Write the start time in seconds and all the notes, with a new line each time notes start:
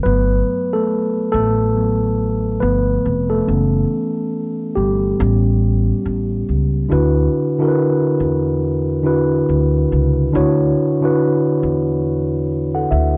0.03 G1 F#3 A3 B3 B4
0.73 A3 A4
1.32 A1 A3 A4
1.76 F#3 A3 B3
2.61 G1 F3 A3 B3 B4
3.06 F1
3.30 A3 A4
3.47 F#1 E3 B3 C#4
4.76 G1 G3 G4
5.19 A1 G3 B3 C#4
6.06 A1
6.49 C#2
6.89 D2 D3 D4 E4 F#4 B4
7.58 D3 D4 E4 F#4 A#4
7.69 B4
8.20 E2
9.03 D3 D4 E4 F#4 B4
9.49 D2
9.92 C#2
10.32 D2 D3 D4 E4 F#4 C#5
11.01 D3 D4 E4 F#4 B4
11.63 E2
12.75 A4 F#5
12.91 D2 E5